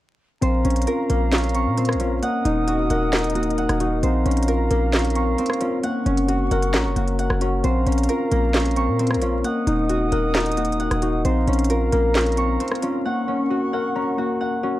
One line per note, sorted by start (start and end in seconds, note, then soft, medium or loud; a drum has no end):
0.41 0.64 A#1 loud
0.41 1.53 C4 medium
0.41 5.80 A#4 medium
0.41 2.06 C5 loud
0.41 2.21 F5 medium
0.41 2.21 A#5 medium
0.41 closed hi-hat medium
0.65 0.86 A#1 loud
0.65 1.32 C#4 medium
0.65 1.78 C#4 medium
0.65 closed hi-hat soft
0.70 closed hi-hat medium
0.76 closed hi-hat medium
0.82 closed hi-hat medium
0.87 1.99 F4 medium
0.87 2.99 A#4 loud
0.87 closed hi-hat medium
1.10 1.68 A#1 loud
1.10 4.31 A#3 medium
1.10 2.23 A#4 medium
1.10 closed hi-hat medium
1.32 2.00 C#4 loud
1.32 snare loud
1.32 clap loud
1.32 closed hi-hat medium
1.38 closed hi-hat medium
1.44 closed hi-hat medium
1.49 closed hi-hat soft
1.54 2.22 C4 medium
1.54 2.81 C#6 loud
1.54 closed hi-hat medium
1.66 1.96 A#2 loud
1.78 4.32 C4 medium
1.78 closed hi-hat medium
1.85 cross-stick loud
1.85 closed hi-hat medium
1.93 2.21 A#1 loud
1.93 closed hi-hat soft
2.00 4.09 C#4 medium
2.00 2.23 F4 medium
2.00 closed hi-hat medium
2.23 3.34 A#3 medium
2.23 4.01 D#5 medium
2.23 4.01 F#5 medium
2.23 2.90 F#5 loud
2.23 4.01 D#6 medium
2.23 closed hi-hat medium
2.45 2.88 D#1 loud
2.45 3.58 D#4 medium
2.45 3.12 D#4 medium
2.45 closed hi-hat medium
2.68 3.79 F#4 medium
2.68 3.35 F#4 medium
2.68 closed hi-hat medium
2.90 3.66 D#1 loud
2.90 4.03 A#4 loud
2.90 3.58 F#5 medium
2.90 closed hi-hat medium
3.13 3.80 D#4 medium
3.13 4.03 A#5 medium
3.13 snare loud
3.13 clap loud
3.13 closed hi-hat medium
3.18 closed hi-hat medium
3.24 closed hi-hat medium
3.30 closed hi-hat medium
3.35 4.03 A#3 medium
3.35 5.79 F#4 medium
3.35 closed hi-hat medium
3.43 closed hi-hat medium
3.50 closed hi-hat soft
3.58 5.19 F#5 medium
3.58 closed hi-hat medium
3.69 4.02 D#1 loud
3.69 cross-stick loud
3.69 closed hi-hat medium
3.80 6.51 D#4 medium
3.80 4.03 F#4 medium
3.80 closed hi-hat medium
4.03 4.25 A#1 loud
4.03 5.14 C4 medium
4.03 5.67 C5 medium
4.03 5.82 F5 medium
4.03 5.82 A#5 medium
4.03 closed hi-hat medium
4.26 4.69 A#1 loud
4.26 5.38 C#4 medium
4.26 4.93 C#4 medium
4.26 closed hi-hat soft
4.31 closed hi-hat medium
4.37 closed hi-hat medium
4.43 closed hi-hat medium
4.48 5.60 F4 medium
4.48 6.60 A#4 medium
4.48 closed hi-hat medium
4.71 5.36 A#1 loud
4.71 7.92 A#3 medium
4.71 5.84 A#4 loud
4.71 closed hi-hat medium
4.93 5.61 C#4 medium
4.93 snare loud
4.93 clap loud
4.93 closed hi-hat medium
4.99 closed hi-hat medium
5.05 closed hi-hat medium
5.10 closed hi-hat soft
5.15 5.83 C4 medium
5.15 6.42 C#6 medium
5.15 closed hi-hat medium
5.38 6.12 C4 medium
5.38 closed hi-hat medium
5.46 cross-stick loud
5.46 closed hi-hat medium
5.53 closed hi-hat soft
5.61 6.06 C#4 medium
5.61 5.84 F4 medium
5.61 closed hi-hat medium
5.83 6.95 A#3 medium
5.83 10.97 A#4 medium
5.83 6.51 F#5 loud
5.83 7.33 F#5 medium
5.83 7.34 C#6 medium
5.83 closed hi-hat medium
6.06 6.49 F#1 loud
6.06 7.19 C#4 medium
6.06 6.73 C#4 medium
6.06 closed hi-hat soft
6.17 closed hi-hat medium
6.28 7.40 F#4 medium
6.28 6.96 F#4 medium
6.28 closed hi-hat medium
6.51 6.75 F#1 loud
6.51 7.64 A#4 loud
6.51 7.18 F#5 medium
6.51 closed hi-hat medium
6.62 closed hi-hat medium
6.74 6.86 A1 loud
6.74 7.41 C#4 medium
6.74 7.64 A#5 medium
6.74 snare loud
6.74 clap loud
6.74 closed hi-hat medium
6.85 6.96 F#1 loud
6.96 7.29 F#1 loud
6.96 7.64 A#3 medium
6.96 9.40 F#4 medium
6.96 closed hi-hat medium
7.08 closed hi-hat soft
7.19 8.80 F#5 medium
7.19 closed hi-hat medium
7.30 7.63 F#1 loud
7.30 cross-stick loud
7.41 7.70 C#4 medium
7.41 7.64 F#4 medium
7.41 closed hi-hat medium
7.63 7.86 A#1 loud
7.63 8.75 C4 medium
7.63 9.28 C5 medium
7.63 9.43 F5 medium
7.63 9.43 A#5 medium
7.63 closed hi-hat medium
7.87 8.08 A#1 loud
7.87 8.54 C#4 medium
7.87 8.99 C#4 medium
7.87 closed hi-hat soft
7.92 closed hi-hat medium
7.98 closed hi-hat medium
8.03 closed hi-hat medium
8.09 9.21 F4 medium
8.09 10.21 A#4 loud
8.09 closed hi-hat medium
8.32 8.90 A#1 loud
8.32 11.53 A#3 medium
8.32 9.45 A#4 medium
8.32 closed hi-hat medium
8.54 9.22 C#4 medium
8.54 snare loud
8.54 clap loud
8.54 closed hi-hat medium
8.60 closed hi-hat medium
8.65 closed hi-hat medium
8.71 closed hi-hat soft
8.76 9.44 C4 medium
8.76 10.03 C#6 medium
8.76 closed hi-hat medium
8.88 9.18 A#2 loud
8.99 11.53 C4 medium
8.99 closed hi-hat medium
9.07 cross-stick medium
9.07 closed hi-hat medium
9.14 9.43 A#1 loud
9.14 closed hi-hat soft
9.22 11.31 C#4 medium
9.22 9.45 F4 medium
9.22 closed hi-hat medium
9.44 10.56 A#3 medium
9.44 11.23 D#5 medium
9.44 10.12 F#5 loud
9.44 11.23 F#5 medium
9.44 11.23 D#6 medium
9.44 closed hi-hat medium
9.67 10.10 D#1 loud
9.67 10.80 D#4 medium
9.67 10.34 D#4 medium
9.67 closed hi-hat medium
9.89 11.01 F#4 medium
9.89 10.57 F#4 medium
9.89 closed hi-hat medium
10.12 10.88 D#1 loud
10.12 11.25 A#4 loud
10.12 10.79 F#5 medium
10.12 closed hi-hat medium
10.35 11.02 D#4 medium
10.35 11.25 A#5 medium
10.35 snare loud
10.35 clap loud
10.35 closed hi-hat medium
10.40 closed hi-hat medium
10.46 closed hi-hat medium
10.52 closed hi-hat medium
10.57 11.25 A#3 medium
10.57 13.01 F#4 medium
10.57 closed hi-hat medium
10.65 closed hi-hat medium
10.72 closed hi-hat soft
10.80 12.41 F#5 loud
10.80 closed hi-hat medium
10.91 11.24 D#1 loud
10.91 cross-stick medium
10.91 closed hi-hat medium
11.02 13.73 D#4 medium
11.02 11.25 F#4 medium
11.02 closed hi-hat medium
11.25 11.47 A#1 loud
11.25 12.36 C4 medium
11.25 14.80 A#4 medium
11.25 12.89 C5 medium
11.25 13.04 F5 medium
11.25 13.04 A#5 medium
11.25 closed hi-hat medium
11.47 11.91 A#1 loud
11.47 12.60 C#4 medium
11.47 12.15 C#4 medium
11.47 closed hi-hat soft
11.53 closed hi-hat medium
11.59 closed hi-hat medium
11.64 closed hi-hat medium
11.70 12.82 F4 medium
11.70 13.82 A#4 medium
11.70 closed hi-hat medium
11.92 12.58 A#1 loud
11.92 14.80 A#3 medium
11.92 13.05 A#4 loud
11.92 closed hi-hat medium
12.15 12.82 C#4 medium
12.15 snare loud
12.15 clap loud
12.15 closed hi-hat medium
12.21 closed hi-hat medium
12.26 closed hi-hat medium
12.32 closed hi-hat soft
12.37 13.05 C4 medium
12.37 13.64 C#6 medium
12.37 closed hi-hat medium
12.60 13.34 C4 medium
12.60 closed hi-hat medium
12.68 cross-stick medium
12.68 closed hi-hat medium
12.75 closed hi-hat soft
12.82 13.27 C#4 medium
12.82 13.05 F4 medium
12.82 closed hi-hat medium
13.05 14.17 A#3 medium
13.05 13.73 F#5 loud
13.05 14.80 F#5 medium
13.05 14.80 C#6 medium
13.28 14.41 C#4 medium
13.28 13.95 C#4 medium
13.50 14.62 F#4 medium
13.50 14.18 F#4 medium
13.73 14.80 A#4 loud
13.73 14.40 F#5 medium
13.96 14.63 C#4 medium
13.96 14.80 A#5 medium
14.18 14.80 A#3 medium
14.18 14.80 F#4 medium
14.41 14.80 F#5 medium
14.63 14.80 C#4 medium
14.63 14.80 F#4 medium